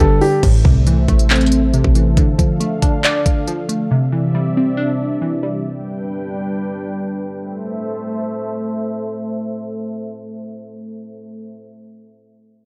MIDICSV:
0, 0, Header, 1, 6, 480
1, 0, Start_track
1, 0, Key_signature, 0, "minor"
1, 0, Tempo, 434783
1, 476, Time_signature, 4, 2, 24, 8
1, 13968, End_track
2, 0, Start_track
2, 0, Title_t, "Analog synth pad"
2, 0, Program_c, 0, 89
2, 0, Note_on_c, 0, 55, 81
2, 0, Note_on_c, 0, 67, 75
2, 0, Note_on_c, 0, 71, 73
2, 0, Note_on_c, 0, 74, 89
2, 457, Note_off_c, 0, 55, 0
2, 457, Note_off_c, 0, 67, 0
2, 457, Note_off_c, 0, 71, 0
2, 457, Note_off_c, 0, 74, 0
2, 475, Note_on_c, 0, 69, 73
2, 476, Note_on_c, 0, 57, 77
2, 476, Note_on_c, 0, 76, 89
2, 477, Note_on_c, 0, 72, 72
2, 2377, Note_off_c, 0, 57, 0
2, 2377, Note_off_c, 0, 72, 0
2, 2377, Note_off_c, 0, 76, 0
2, 2396, Note_on_c, 0, 50, 81
2, 2396, Note_on_c, 0, 62, 74
2, 2396, Note_on_c, 0, 77, 90
2, 4277, Note_off_c, 0, 69, 0
2, 4297, Note_off_c, 0, 50, 0
2, 4297, Note_off_c, 0, 62, 0
2, 4297, Note_off_c, 0, 77, 0
2, 4317, Note_on_c, 0, 48, 77
2, 4317, Note_on_c, 0, 60, 72
2, 4318, Note_on_c, 0, 74, 73
2, 4318, Note_on_c, 0, 76, 89
2, 6217, Note_off_c, 0, 48, 0
2, 6218, Note_off_c, 0, 60, 0
2, 6218, Note_off_c, 0, 74, 0
2, 6218, Note_off_c, 0, 76, 0
2, 6235, Note_on_c, 0, 55, 81
2, 6235, Note_on_c, 0, 62, 74
2, 6235, Note_on_c, 0, 71, 72
2, 6235, Note_on_c, 0, 79, 85
2, 8136, Note_off_c, 0, 62, 0
2, 8136, Note_off_c, 0, 79, 0
2, 8137, Note_off_c, 0, 55, 0
2, 8137, Note_off_c, 0, 71, 0
2, 8156, Note_on_c, 0, 69, 71
2, 8157, Note_on_c, 0, 57, 80
2, 8157, Note_on_c, 0, 76, 87
2, 8158, Note_on_c, 0, 72, 75
2, 12734, Note_off_c, 0, 57, 0
2, 12734, Note_off_c, 0, 69, 0
2, 12734, Note_off_c, 0, 76, 0
2, 12735, Note_off_c, 0, 72, 0
2, 13968, End_track
3, 0, Start_track
3, 0, Title_t, "Grand piano"
3, 0, Program_c, 1, 0
3, 0, Note_on_c, 1, 69, 86
3, 222, Note_off_c, 1, 69, 0
3, 236, Note_on_c, 1, 67, 78
3, 464, Note_off_c, 1, 67, 0
3, 13968, End_track
4, 0, Start_track
4, 0, Title_t, "Synth pluck"
4, 0, Program_c, 2, 84
4, 0, Note_on_c, 2, 50, 86
4, 0, Note_on_c, 2, 55, 91
4, 0, Note_on_c, 2, 59, 77
4, 0, Note_on_c, 2, 62, 101
4, 227, Note_off_c, 2, 55, 0
4, 241, Note_on_c, 2, 55, 81
4, 475, Note_off_c, 2, 62, 0
4, 476, Note_off_c, 2, 50, 0
4, 478, Note_off_c, 2, 55, 0
4, 480, Note_off_c, 2, 59, 0
4, 481, Note_on_c, 2, 45, 95
4, 708, Note_on_c, 2, 48, 81
4, 956, Note_on_c, 2, 52, 85
4, 1200, Note_on_c, 2, 57, 87
4, 1442, Note_on_c, 2, 60, 109
4, 1678, Note_off_c, 2, 45, 0
4, 1904, Note_off_c, 2, 48, 0
4, 1917, Note_on_c, 2, 48, 90
4, 2144, Note_off_c, 2, 52, 0
4, 2157, Note_on_c, 2, 52, 84
4, 2397, Note_off_c, 2, 48, 0
4, 2397, Note_off_c, 2, 52, 0
4, 2398, Note_off_c, 2, 57, 0
4, 2399, Note_off_c, 2, 60, 0
4, 2406, Note_on_c, 2, 50, 96
4, 2631, Note_on_c, 2, 53, 80
4, 2873, Note_on_c, 2, 57, 94
4, 3115, Note_on_c, 2, 62, 85
4, 3361, Note_on_c, 2, 74, 105
4, 3601, Note_off_c, 2, 50, 0
4, 3823, Note_off_c, 2, 53, 0
4, 3837, Note_on_c, 2, 53, 92
4, 4058, Note_off_c, 2, 57, 0
4, 4071, Note_on_c, 2, 57, 76
4, 4314, Note_off_c, 2, 57, 0
4, 4316, Note_off_c, 2, 53, 0
4, 4316, Note_off_c, 2, 62, 0
4, 4317, Note_on_c, 2, 48, 94
4, 4319, Note_off_c, 2, 74, 0
4, 4553, Note_on_c, 2, 52, 81
4, 4799, Note_on_c, 2, 55, 88
4, 5047, Note_on_c, 2, 60, 80
4, 5270, Note_on_c, 2, 62, 100
4, 5517, Note_off_c, 2, 48, 0
4, 5745, Note_off_c, 2, 52, 0
4, 5758, Note_on_c, 2, 52, 86
4, 5981, Note_off_c, 2, 55, 0
4, 5994, Note_on_c, 2, 55, 82
4, 6233, Note_off_c, 2, 62, 0
4, 6235, Note_off_c, 2, 55, 0
4, 6237, Note_off_c, 2, 52, 0
4, 6242, Note_off_c, 2, 60, 0
4, 13968, End_track
5, 0, Start_track
5, 0, Title_t, "808-style bass"
5, 0, Program_c, 3, 38
5, 0, Note_on_c, 3, 31, 108
5, 227, Note_off_c, 3, 31, 0
5, 476, Note_on_c, 3, 33, 110
5, 707, Note_off_c, 3, 33, 0
5, 717, Note_on_c, 3, 36, 102
5, 1177, Note_off_c, 3, 36, 0
5, 1197, Note_on_c, 3, 33, 108
5, 2003, Note_off_c, 3, 33, 0
5, 2036, Note_on_c, 3, 33, 102
5, 2382, Note_off_c, 3, 33, 0
5, 13968, End_track
6, 0, Start_track
6, 0, Title_t, "Drums"
6, 236, Note_on_c, 9, 46, 57
6, 346, Note_off_c, 9, 46, 0
6, 476, Note_on_c, 9, 36, 124
6, 476, Note_on_c, 9, 42, 68
6, 476, Note_on_c, 9, 49, 90
6, 587, Note_off_c, 9, 36, 0
6, 587, Note_off_c, 9, 42, 0
6, 587, Note_off_c, 9, 49, 0
6, 717, Note_on_c, 9, 36, 89
6, 827, Note_off_c, 9, 36, 0
6, 956, Note_on_c, 9, 42, 79
6, 1066, Note_off_c, 9, 42, 0
6, 1196, Note_on_c, 9, 42, 50
6, 1197, Note_on_c, 9, 36, 88
6, 1306, Note_off_c, 9, 42, 0
6, 1307, Note_off_c, 9, 36, 0
6, 1316, Note_on_c, 9, 42, 86
6, 1426, Note_off_c, 9, 42, 0
6, 1436, Note_on_c, 9, 42, 42
6, 1437, Note_on_c, 9, 39, 113
6, 1496, Note_off_c, 9, 42, 0
6, 1496, Note_on_c, 9, 42, 54
6, 1547, Note_off_c, 9, 39, 0
6, 1556, Note_off_c, 9, 42, 0
6, 1556, Note_on_c, 9, 42, 61
6, 1616, Note_off_c, 9, 42, 0
6, 1616, Note_on_c, 9, 42, 69
6, 1676, Note_off_c, 9, 42, 0
6, 1676, Note_on_c, 9, 42, 93
6, 1786, Note_off_c, 9, 42, 0
6, 1916, Note_on_c, 9, 42, 59
6, 2026, Note_off_c, 9, 42, 0
6, 2036, Note_on_c, 9, 36, 98
6, 2146, Note_off_c, 9, 36, 0
6, 2156, Note_on_c, 9, 42, 74
6, 2267, Note_off_c, 9, 42, 0
6, 2396, Note_on_c, 9, 42, 68
6, 2397, Note_on_c, 9, 36, 121
6, 2507, Note_off_c, 9, 36, 0
6, 2507, Note_off_c, 9, 42, 0
6, 2637, Note_on_c, 9, 42, 76
6, 2638, Note_on_c, 9, 36, 87
6, 2748, Note_off_c, 9, 36, 0
6, 2748, Note_off_c, 9, 42, 0
6, 2877, Note_on_c, 9, 42, 73
6, 2988, Note_off_c, 9, 42, 0
6, 3117, Note_on_c, 9, 42, 87
6, 3118, Note_on_c, 9, 36, 92
6, 3228, Note_off_c, 9, 36, 0
6, 3228, Note_off_c, 9, 42, 0
6, 3358, Note_on_c, 9, 42, 70
6, 3359, Note_on_c, 9, 39, 118
6, 3468, Note_off_c, 9, 42, 0
6, 3469, Note_off_c, 9, 39, 0
6, 3597, Note_on_c, 9, 42, 92
6, 3598, Note_on_c, 9, 36, 90
6, 3707, Note_off_c, 9, 42, 0
6, 3708, Note_off_c, 9, 36, 0
6, 3837, Note_on_c, 9, 42, 60
6, 3947, Note_off_c, 9, 42, 0
6, 4077, Note_on_c, 9, 42, 75
6, 4187, Note_off_c, 9, 42, 0
6, 13968, End_track
0, 0, End_of_file